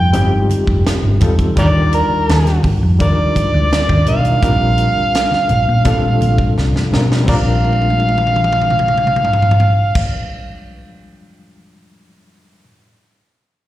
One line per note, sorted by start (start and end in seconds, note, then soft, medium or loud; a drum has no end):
0.00 0.11 F2 medium
0.00 0.13 G3 medium
0.00 0.13 C4 medium
0.00 0.14 D#4 medium
0.00 0.15 F4 medium
0.00 1.23 A4 medium
0.00 0.51 G5 medium
0.13 0.43 G1 loud
0.13 1.02 G3 medium
0.13 1.02 C4 medium
0.13 1.02 D#4 medium
0.13 1.03 F4 medium
0.13 1.03 G4 loud
0.13 closed hi-hat medium
0.13 muted conga soft
0.50 closed hi-hat medium
0.50 high conga medium
0.67 0.82 F1 medium
0.67 kick medium
0.84 snare loud
0.84 closed hi-hat medium
0.84 muted conga soft
1.03 1.18 G1 medium
1.03 low conga medium
1.20 1.51 E2 medium
1.20 1.50 G3 medium
1.20 1.50 C4 medium
1.20 1.51 D#4 medium
1.20 1.51 F4 medium
1.20 1.51 A4 loud
1.20 kick loud
1.20 closed hi-hat medium
1.20 low conga medium
1.39 kick medium
1.39 closed hi-hat soft
1.56 2.01 D#2 loud
1.56 2.74 G3 medium
1.56 2.74 D4 medium
1.56 2.74 D#4 medium
1.56 2.75 F4 medium
1.56 1.66 G4 medium
1.56 2.75 A#4 medium
1.56 1.67 A#4 medium
1.56 1.91 D5 loud
1.56 kick loud
1.56 closed hi-hat medium
1.92 2.61 A#4 medium
1.92 closed hi-hat medium
1.92 muted conga soft
2.10 muted fingered electric bass stroke soft
2.10 high conga soft
2.29 2.58 D#2 loud
2.29 snare loud
2.29 closed hi-hat medium
2.45 snare soft
2.45 closed hi-hat medium
2.45 high conga medium
2.63 kick loud
2.63 open hi-hat soft
2.63 muted conga soft
2.63 high conga medium
2.63 low conga medium
2.83 3.00 F2 medium
2.99 3.30 D#2 loud
2.99 3.87 G3 medium
2.99 3.88 D4 medium
2.99 3.88 D#4 medium
2.99 3.88 F4 medium
2.99 3.89 A#4 medium
2.99 4.04 D5 loud
2.99 kick loud
2.99 closed hi-hat loud
2.99 muted conga soft
3.35 kick medium
3.35 closed hi-hat medium
3.35 muted conga soft
3.35 high conga medium
3.54 3.68 D2 medium
3.71 snare loud
3.71 closed hi-hat medium
3.71 muted conga soft
3.89 4.04 D#2 medium
3.89 kick medium
3.89 low conga medium
4.05 4.37 B1 medium
4.05 4.35 G3 medium
4.05 4.36 D4 medium
4.05 4.36 D#4 medium
4.05 4.36 F4 medium
4.05 4.37 A#4 medium
4.05 6.53 F5 loud
4.05 closed hi-hat medium
4.05 muted conga soft
4.05 low conga medium
4.25 closed hi-hat soft
4.42 4.87 A#1 loud
4.42 5.59 G3 medium
4.42 5.60 C4 medium
4.42 5.60 D4 medium
4.42 5.60 F4 medium
4.42 5.61 A#4 medium
4.42 kick loud
4.42 closed hi-hat medium
4.42 muted conga soft
4.78 closed hi-hat medium
4.96 muted fingered electric bass stroke soft
4.96 high conga soft
5.15 snare loud
5.15 closed hi-hat loud
5.31 snare soft
5.31 high conga medium
5.49 5.65 A#1 medium
5.49 closed hi-hat medium
5.49 high conga medium
5.49 low conga medium
5.69 5.83 A#2 loud
5.85 6.15 A#2 loud
5.85 6.73 G3 medium
5.85 6.73 C4 medium
5.85 6.73 D4 medium
5.85 6.74 F4 medium
5.85 6.74 A4 loud
5.85 kick loud
5.85 closed hi-hat medium
6.21 6.51 A#1 medium
6.21 closed hi-hat medium
6.21 high conga medium
6.38 kick medium
6.57 6.72 C2 medium
6.57 snare medium
6.75 snare medium
6.75 low conga medium
6.91 7.22 B1 medium
6.91 7.21 G3 medium
6.91 7.22 C4 medium
6.91 7.22 D4 medium
6.91 7.22 F4 medium
6.91 7.23 A#4 loud
6.91 snare loud
6.91 muted conga soft
6.91 low conga medium
7.12 snare medium
7.23 10.03 G3 medium
7.23 10.04 C4 medium
7.23 high conga medium
7.28 10.06 A#1 loud
7.28 10.06 D4 medium
7.28 10.07 F4 medium
7.28 7.36 A#4 medium
7.28 7.35 D5 medium
7.28 10.06 F5 medium
7.28 kick loud
7.28 crash loud
7.34 10.08 A#4 medium
7.65 high tom soft
7.73 high tom soft
7.82 high tom medium
7.90 high tom medium
8.00 high tom medium
8.09 high tom medium
8.18 mid tom medium
8.27 mid tom medium
8.36 mid tom medium
8.44 mid tom medium
8.53 mid tom medium
8.62 mid tom medium
8.70 mid tom medium
8.79 mid tom medium
8.88 mid tom medium
8.98 mid tom medium
9.07 mid tom medium
9.16 mid tom medium
9.25 floor tom medium
9.33 floor tom medium
9.42 floor tom medium
9.51 floor tom medium
9.60 floor tom medium
9.95 kick loud
9.95 crash loud